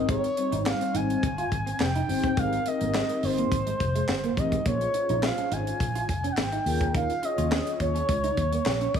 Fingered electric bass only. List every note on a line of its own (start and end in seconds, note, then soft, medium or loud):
0.00 0.21 G#1 loud
0.52 0.73 G#1 loud
0.94 1.15 G#1 medium
1.23 1.43 G1 medium
1.52 1.72 G#1 medium
1.80 2.00 F1 loud
2.08 2.29 G1 medium
2.37 2.58 G#1 medium
2.81 3.01 G#1 loud
3.23 3.43 G1 medium
3.52 3.72 G#1 medium
3.80 4.01 F1 medium
4.09 4.29 G1 medium
4.37 4.57 A1 loud
4.66 4.86 A#1 medium
5.09 5.30 A#1 loud
5.51 5.72 G#1 medium
5.80 6.09 A#1 medium
6.09 6.29 F1 medium
6.37 6.58 G#1 medium
6.66 7.06 D#2 loud
7.38 7.58 D#2 loud
7.80 8.00 D#2 medium
8.09 8.29 C#2 medium
8.37 8.58 D#2 medium
8.66 8.86 A#1 loud
8.94 9.00 G#1 loud